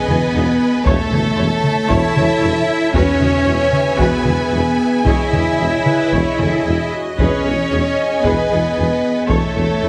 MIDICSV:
0, 0, Header, 1, 10, 480
1, 0, Start_track
1, 0, Tempo, 522193
1, 788, Time_signature, 4, 2, 24, 8
1, 3670, Tempo, 529568
1, 9014, End_track
2, 0, Start_track
2, 0, Title_t, "Violin section"
2, 0, Program_c, 0, 48
2, 0, Note_on_c, 0, 75, 78
2, 0, Note_on_c, 0, 80, 73
2, 750, Note_off_c, 0, 75, 0
2, 754, Note_off_c, 0, 80, 0
2, 784, Note_on_c, 0, 81, 79
2, 790, Note_on_c, 0, 76, 79
2, 2697, Note_on_c, 0, 80, 85
2, 2706, Note_off_c, 0, 81, 0
2, 4601, Note_off_c, 0, 76, 0
2, 4628, Note_on_c, 0, 75, 66
2, 6345, Note_off_c, 0, 80, 0
2, 6565, Note_on_c, 0, 80, 63
2, 8437, Note_off_c, 0, 75, 0
2, 8438, Note_off_c, 0, 80, 0
2, 8461, Note_on_c, 0, 73, 68
2, 8466, Note_on_c, 0, 76, 71
2, 9014, Note_off_c, 0, 73, 0
2, 9014, Note_off_c, 0, 76, 0
2, 9014, End_track
3, 0, Start_track
3, 0, Title_t, "French horn section"
3, 0, Program_c, 1, 60
3, 0, Note_on_c, 1, 68, 81
3, 0, Note_on_c, 1, 71, 77
3, 746, Note_off_c, 1, 68, 0
3, 746, Note_off_c, 1, 71, 0
3, 780, Note_on_c, 1, 73, 80
3, 782, Note_on_c, 1, 69, 88
3, 2668, Note_off_c, 1, 73, 0
3, 2669, Note_off_c, 1, 69, 0
3, 2710, Note_on_c, 1, 68, 87
3, 2715, Note_on_c, 1, 71, 90
3, 4603, Note_off_c, 1, 71, 0
3, 4631, Note_on_c, 1, 73, 72
3, 6290, Note_off_c, 1, 73, 0
3, 6293, Note_off_c, 1, 68, 0
3, 6555, Note_on_c, 1, 75, 62
3, 6561, Note_on_c, 1, 68, 65
3, 8433, Note_off_c, 1, 75, 0
3, 8437, Note_off_c, 1, 68, 0
3, 8478, Note_on_c, 1, 69, 65
3, 8489, Note_on_c, 1, 73, 67
3, 9014, Note_off_c, 1, 69, 0
3, 9014, Note_off_c, 1, 73, 0
3, 9014, End_track
4, 0, Start_track
4, 0, Title_t, "Violin section"
4, 0, Program_c, 2, 48
4, 0, Note_on_c, 2, 71, 70
4, 791, Note_on_c, 2, 69, 83
4, 795, Note_off_c, 2, 71, 0
4, 1753, Note_off_c, 2, 69, 0
4, 1753, Note_on_c, 2, 76, 93
4, 2709, Note_off_c, 2, 76, 0
4, 2709, Note_on_c, 2, 73, 97
4, 3650, Note_off_c, 2, 73, 0
4, 3680, Note_on_c, 2, 71, 65
4, 4622, Note_off_c, 2, 71, 0
4, 4634, Note_on_c, 2, 76, 68
4, 6294, Note_off_c, 2, 76, 0
4, 6566, Note_on_c, 2, 73, 73
4, 7487, Note_off_c, 2, 73, 0
4, 7515, Note_on_c, 2, 71, 55
4, 8472, Note_off_c, 2, 71, 0
4, 8480, Note_on_c, 2, 69, 63
4, 9014, Note_off_c, 2, 69, 0
4, 9014, End_track
5, 0, Start_track
5, 0, Title_t, "Viola section"
5, 0, Program_c, 3, 48
5, 61, Note_on_c, 3, 68, 52
5, 135, Note_off_c, 3, 68, 0
5, 313, Note_on_c, 3, 63, 64
5, 313, Note_on_c, 3, 68, 60
5, 386, Note_off_c, 3, 63, 0
5, 386, Note_off_c, 3, 68, 0
5, 785, Note_on_c, 3, 73, 79
5, 789, Note_off_c, 3, 73, 0
5, 789, Note_on_c, 3, 73, 72
5, 1011, Note_off_c, 3, 73, 0
5, 1031, Note_on_c, 3, 69, 52
5, 1034, Note_on_c, 3, 73, 49
5, 1105, Note_off_c, 3, 69, 0
5, 1108, Note_off_c, 3, 73, 0
5, 1258, Note_on_c, 3, 64, 60
5, 1259, Note_on_c, 3, 73, 65
5, 1331, Note_off_c, 3, 64, 0
5, 1332, Note_off_c, 3, 73, 0
5, 1742, Note_on_c, 3, 73, 72
5, 1743, Note_off_c, 3, 73, 0
5, 1743, Note_on_c, 3, 73, 83
5, 1969, Note_off_c, 3, 73, 0
5, 1977, Note_on_c, 3, 69, 69
5, 1979, Note_on_c, 3, 73, 64
5, 2050, Note_off_c, 3, 69, 0
5, 2052, Note_off_c, 3, 73, 0
5, 2215, Note_on_c, 3, 64, 64
5, 2216, Note_on_c, 3, 73, 56
5, 2288, Note_off_c, 3, 64, 0
5, 2290, Note_off_c, 3, 73, 0
5, 2705, Note_on_c, 3, 66, 86
5, 2705, Note_on_c, 3, 71, 82
5, 2929, Note_off_c, 3, 66, 0
5, 2929, Note_off_c, 3, 71, 0
5, 2949, Note_on_c, 3, 66, 55
5, 2954, Note_on_c, 3, 68, 61
5, 3022, Note_off_c, 3, 66, 0
5, 3028, Note_off_c, 3, 68, 0
5, 3184, Note_on_c, 3, 66, 59
5, 3186, Note_off_c, 3, 66, 0
5, 3186, Note_on_c, 3, 66, 54
5, 3259, Note_off_c, 3, 66, 0
5, 3667, Note_on_c, 3, 71, 76
5, 3668, Note_on_c, 3, 66, 84
5, 3890, Note_off_c, 3, 66, 0
5, 3890, Note_off_c, 3, 71, 0
5, 3905, Note_on_c, 3, 66, 55
5, 3911, Note_on_c, 3, 68, 58
5, 3977, Note_off_c, 3, 66, 0
5, 3983, Note_off_c, 3, 68, 0
5, 4144, Note_on_c, 3, 66, 49
5, 4147, Note_off_c, 3, 66, 0
5, 4147, Note_on_c, 3, 66, 56
5, 4220, Note_off_c, 3, 66, 0
5, 4633, Note_on_c, 3, 68, 63
5, 4637, Note_on_c, 3, 73, 60
5, 4860, Note_off_c, 3, 68, 0
5, 4863, Note_off_c, 3, 73, 0
5, 4881, Note_on_c, 3, 68, 45
5, 4885, Note_off_c, 3, 68, 0
5, 4885, Note_on_c, 3, 68, 44
5, 4958, Note_off_c, 3, 68, 0
5, 5111, Note_on_c, 3, 68, 60
5, 5340, Note_off_c, 3, 68, 0
5, 5364, Note_on_c, 3, 71, 63
5, 5605, Note_on_c, 3, 73, 60
5, 5606, Note_off_c, 3, 71, 0
5, 5844, Note_on_c, 3, 69, 64
5, 5847, Note_off_c, 3, 73, 0
5, 6076, Note_on_c, 3, 68, 53
5, 6086, Note_off_c, 3, 69, 0
5, 6319, Note_on_c, 3, 66, 54
5, 6323, Note_off_c, 3, 68, 0
5, 6564, Note_off_c, 3, 66, 0
5, 6567, Note_on_c, 3, 71, 70
5, 6571, Note_on_c, 3, 68, 71
5, 6788, Note_off_c, 3, 68, 0
5, 6791, Note_off_c, 3, 71, 0
5, 6799, Note_on_c, 3, 68, 38
5, 6800, Note_off_c, 3, 68, 0
5, 6800, Note_on_c, 3, 68, 42
5, 6872, Note_off_c, 3, 68, 0
5, 7039, Note_on_c, 3, 63, 46
5, 7041, Note_on_c, 3, 68, 41
5, 7112, Note_off_c, 3, 63, 0
5, 7114, Note_off_c, 3, 68, 0
5, 7515, Note_on_c, 3, 71, 64
5, 7517, Note_on_c, 3, 68, 62
5, 7742, Note_off_c, 3, 71, 0
5, 7743, Note_off_c, 3, 68, 0
5, 7763, Note_on_c, 3, 68, 51
5, 7766, Note_off_c, 3, 68, 0
5, 7766, Note_on_c, 3, 68, 45
5, 7839, Note_off_c, 3, 68, 0
5, 8008, Note_on_c, 3, 63, 47
5, 8009, Note_on_c, 3, 68, 47
5, 8081, Note_off_c, 3, 63, 0
5, 8081, Note_off_c, 3, 68, 0
5, 8472, Note_on_c, 3, 69, 62
5, 8475, Note_on_c, 3, 73, 64
5, 8694, Note_off_c, 3, 69, 0
5, 8695, Note_off_c, 3, 73, 0
5, 8719, Note_on_c, 3, 69, 45
5, 8722, Note_off_c, 3, 69, 0
5, 8722, Note_on_c, 3, 69, 44
5, 8794, Note_off_c, 3, 69, 0
5, 8961, Note_on_c, 3, 64, 44
5, 8963, Note_on_c, 3, 69, 45
5, 9014, Note_off_c, 3, 64, 0
5, 9014, Note_off_c, 3, 69, 0
5, 9014, End_track
6, 0, Start_track
6, 0, Title_t, "Cello section"
6, 0, Program_c, 4, 48
6, 0, Note_on_c, 4, 59, 81
6, 790, Note_off_c, 4, 59, 0
6, 791, Note_on_c, 4, 57, 90
6, 1734, Note_off_c, 4, 57, 0
6, 1752, Note_on_c, 4, 64, 101
6, 2704, Note_on_c, 4, 61, 118
6, 2709, Note_off_c, 4, 64, 0
6, 3648, Note_off_c, 4, 61, 0
6, 3668, Note_on_c, 4, 59, 91
6, 4635, Note_off_c, 4, 59, 0
6, 4637, Note_on_c, 4, 64, 93
6, 6296, Note_off_c, 4, 64, 0
6, 6570, Note_on_c, 4, 61, 84
6, 7489, Note_off_c, 4, 61, 0
6, 7527, Note_on_c, 4, 59, 66
6, 8477, Note_on_c, 4, 57, 77
6, 8478, Note_off_c, 4, 59, 0
6, 9014, Note_off_c, 4, 57, 0
6, 9014, End_track
7, 0, Start_track
7, 0, Title_t, "Double bass section"
7, 0, Program_c, 5, 48
7, 71, Note_on_c, 5, 40, 57
7, 145, Note_off_c, 5, 40, 0
7, 311, Note_on_c, 5, 40, 64
7, 385, Note_off_c, 5, 40, 0
7, 794, Note_on_c, 5, 40, 80
7, 867, Note_off_c, 5, 40, 0
7, 1027, Note_on_c, 5, 40, 59
7, 1101, Note_off_c, 5, 40, 0
7, 1274, Note_on_c, 5, 40, 62
7, 1347, Note_off_c, 5, 40, 0
7, 1753, Note_on_c, 5, 40, 86
7, 1827, Note_off_c, 5, 40, 0
7, 1993, Note_on_c, 5, 40, 59
7, 2067, Note_off_c, 5, 40, 0
7, 2225, Note_on_c, 5, 40, 66
7, 2298, Note_off_c, 5, 40, 0
7, 2707, Note_on_c, 5, 40, 81
7, 2780, Note_off_c, 5, 40, 0
7, 2945, Note_on_c, 5, 40, 58
7, 3018, Note_off_c, 5, 40, 0
7, 3190, Note_on_c, 5, 40, 57
7, 3264, Note_off_c, 5, 40, 0
7, 3671, Note_on_c, 5, 40, 83
7, 3743, Note_off_c, 5, 40, 0
7, 3910, Note_on_c, 5, 40, 50
7, 3983, Note_off_c, 5, 40, 0
7, 4144, Note_on_c, 5, 40, 55
7, 4216, Note_off_c, 5, 40, 0
7, 4639, Note_on_c, 5, 40, 64
7, 4711, Note_off_c, 5, 40, 0
7, 4887, Note_on_c, 5, 40, 54
7, 4959, Note_off_c, 5, 40, 0
7, 5134, Note_on_c, 5, 40, 44
7, 5206, Note_off_c, 5, 40, 0
7, 5608, Note_on_c, 5, 40, 69
7, 5681, Note_off_c, 5, 40, 0
7, 5846, Note_on_c, 5, 40, 45
7, 5919, Note_off_c, 5, 40, 0
7, 6092, Note_on_c, 5, 40, 47
7, 6164, Note_off_c, 5, 40, 0
7, 6573, Note_on_c, 5, 40, 59
7, 6645, Note_off_c, 5, 40, 0
7, 6807, Note_on_c, 5, 40, 46
7, 6880, Note_off_c, 5, 40, 0
7, 7045, Note_on_c, 5, 40, 47
7, 7118, Note_off_c, 5, 40, 0
7, 7530, Note_on_c, 5, 40, 64
7, 7602, Note_off_c, 5, 40, 0
7, 7773, Note_on_c, 5, 40, 44
7, 7846, Note_off_c, 5, 40, 0
7, 8006, Note_on_c, 5, 40, 49
7, 8079, Note_off_c, 5, 40, 0
7, 8473, Note_on_c, 5, 40, 64
7, 8546, Note_off_c, 5, 40, 0
7, 8712, Note_on_c, 5, 40, 48
7, 8785, Note_off_c, 5, 40, 0
7, 8947, Note_on_c, 5, 40, 44
7, 9014, Note_off_c, 5, 40, 0
7, 9014, End_track
8, 0, Start_track
8, 0, Title_t, "Timpani"
8, 0, Program_c, 6, 47
8, 792, Note_on_c, 6, 40, 73
8, 1474, Note_off_c, 6, 40, 0
8, 2712, Note_on_c, 6, 40, 72
8, 3393, Note_off_c, 6, 40, 0
8, 9014, End_track
9, 0, Start_track
9, 0, Title_t, "Tuba"
9, 0, Program_c, 7, 58
9, 77, Note_on_c, 7, 28, 56
9, 171, Note_off_c, 7, 28, 0
9, 315, Note_on_c, 7, 28, 61
9, 410, Note_off_c, 7, 28, 0
9, 797, Note_on_c, 7, 28, 85
9, 891, Note_off_c, 7, 28, 0
9, 1038, Note_on_c, 7, 28, 51
9, 1132, Note_off_c, 7, 28, 0
9, 1271, Note_on_c, 7, 28, 56
9, 1367, Note_off_c, 7, 28, 0
9, 1751, Note_on_c, 7, 28, 83
9, 1847, Note_off_c, 7, 28, 0
9, 1995, Note_on_c, 7, 28, 61
9, 2090, Note_off_c, 7, 28, 0
9, 2231, Note_on_c, 7, 28, 63
9, 2327, Note_off_c, 7, 28, 0
9, 2713, Note_on_c, 7, 28, 73
9, 2808, Note_off_c, 7, 28, 0
9, 2950, Note_on_c, 7, 28, 51
9, 3045, Note_off_c, 7, 28, 0
9, 3192, Note_on_c, 7, 28, 63
9, 3287, Note_off_c, 7, 28, 0
9, 3667, Note_on_c, 7, 28, 77
9, 3763, Note_off_c, 7, 28, 0
9, 3905, Note_on_c, 7, 28, 53
9, 4001, Note_off_c, 7, 28, 0
9, 4150, Note_on_c, 7, 28, 57
9, 4246, Note_off_c, 7, 28, 0
9, 4632, Note_on_c, 7, 28, 61
9, 4730, Note_off_c, 7, 28, 0
9, 4882, Note_on_c, 7, 28, 44
9, 4978, Note_off_c, 7, 28, 0
9, 5111, Note_on_c, 7, 28, 52
9, 5210, Note_off_c, 7, 28, 0
9, 5600, Note_on_c, 7, 28, 67
9, 5698, Note_off_c, 7, 28, 0
9, 5842, Note_on_c, 7, 28, 45
9, 5939, Note_off_c, 7, 28, 0
9, 6090, Note_on_c, 7, 28, 51
9, 6186, Note_off_c, 7, 28, 0
9, 6565, Note_on_c, 7, 28, 61
9, 6662, Note_off_c, 7, 28, 0
9, 6803, Note_on_c, 7, 28, 38
9, 6900, Note_off_c, 7, 28, 0
9, 7043, Note_on_c, 7, 28, 45
9, 7139, Note_off_c, 7, 28, 0
9, 7518, Note_on_c, 7, 28, 62
9, 7615, Note_off_c, 7, 28, 0
9, 7760, Note_on_c, 7, 28, 45
9, 7856, Note_off_c, 7, 28, 0
9, 7993, Note_on_c, 7, 28, 51
9, 8090, Note_off_c, 7, 28, 0
9, 8468, Note_on_c, 7, 28, 63
9, 8564, Note_off_c, 7, 28, 0
9, 8709, Note_on_c, 7, 28, 42
9, 8804, Note_off_c, 7, 28, 0
9, 8948, Note_on_c, 7, 28, 49
9, 9014, Note_off_c, 7, 28, 0
9, 9014, End_track
10, 0, Start_track
10, 0, Title_t, "Taiko and cinematic ensemble drums"
10, 69, Note_on_c, 9, 47, 48
10, 161, Note_off_c, 9, 47, 0
10, 786, Note_on_c, 9, 41, 99
10, 877, Note_off_c, 9, 41, 0
10, 1025, Note_on_c, 9, 47, 47
10, 1116, Note_off_c, 9, 47, 0
10, 1504, Note_on_c, 9, 47, 46
10, 1596, Note_off_c, 9, 47, 0
10, 1744, Note_on_c, 9, 41, 71
10, 1836, Note_off_c, 9, 41, 0
10, 1985, Note_on_c, 9, 47, 53
10, 2077, Note_off_c, 9, 47, 0
10, 2697, Note_on_c, 9, 41, 92
10, 2789, Note_off_c, 9, 41, 0
10, 2943, Note_on_c, 9, 47, 46
10, 3035, Note_off_c, 9, 47, 0
10, 3420, Note_on_c, 9, 47, 44
10, 3512, Note_off_c, 9, 47, 0
10, 3663, Note_on_c, 9, 41, 79
10, 3754, Note_off_c, 9, 41, 0
10, 3899, Note_on_c, 9, 47, 48
10, 3990, Note_off_c, 9, 47, 0
10, 4630, Note_on_c, 9, 41, 92
10, 4721, Note_off_c, 9, 41, 0
10, 4878, Note_on_c, 9, 47, 44
10, 4969, Note_off_c, 9, 47, 0
10, 5357, Note_on_c, 9, 47, 44
10, 5448, Note_off_c, 9, 47, 0
10, 5598, Note_on_c, 9, 41, 72
10, 5688, Note_off_c, 9, 41, 0
10, 5842, Note_on_c, 9, 47, 43
10, 5932, Note_off_c, 9, 47, 0
10, 6566, Note_on_c, 9, 41, 100
10, 6656, Note_off_c, 9, 41, 0
10, 7518, Note_on_c, 9, 41, 70
10, 7609, Note_off_c, 9, 41, 0
10, 8472, Note_on_c, 9, 41, 90
10, 8563, Note_off_c, 9, 41, 0
10, 9014, End_track
0, 0, End_of_file